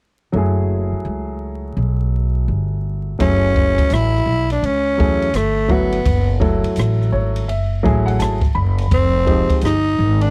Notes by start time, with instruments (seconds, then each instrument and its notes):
0.32 upright bass F#1, upright piano F#3 A3 E4
0.37 upright piano G#4
0.92 muted upright bass stroke
1.05 upright bass C#2
1.77 upright bass B1
2.48 upright bass G1
3.19 upright bass F#1, upright piano F#3 A3 E4 G#4, tenor saxophone C#4, kick, ride
3.56 kick
3.78 muted upright bass stroke, kick, ride
3.90 upright bass A1, tenor saxophone E4, cross-stick, hi-hat pedal, ride
4.16 cross-stick
4.26 upright bass B1
4.50 tenor saxophone D4, cross-stick, ride
4.62 upright bass C#2, tenor saxophone C#4, ride
4.98 upright bass E2, upright piano F#3 A3 E4 G#4, kick
5.22 ride
5.33 upright bass G1, tenor saxophone A3, cross-stick, hi-hat pedal, ride
5.68 upright piano F#3 A3 E4 F#4, tenor saxophone B3, kick
5.92 ride
6.05 upright bass F#1, kick, ride
6.40 upright piano F#3 A3 E4 A4, kick
6.63 muted upright bass stroke, ride
6.76 upright bass A1, cross-stick, hi-hat pedal, ride
7.01 cross-stick
7.12 upright bass G#1, upright piano C#5
7.36 ride
7.48 upright bass F#1, upright piano E5, ride
7.83 upright bass A1, upright piano F#3 A3 E4 G#4 E5, kick
8.06 upright piano F#5, ride
8.19 upright bass G#1, upright piano A5, cross-stick, hi-hat pedal, ride
8.41 kick, cross-stick
8.55 upright bass F#1, upright piano B5
8.78 cross-stick, ride
8.91 upright bass F1, tenor saxophone C4, kick, ride
9.26 upright piano F3 G#3 D#4 G4, kick
9.50 kick, ride
9.61 upright bass G1, tenor saxophone D#4, cross-stick, hi-hat pedal, ride
9.99 upright bass G#1
10.21 tenor saxophone D4, ride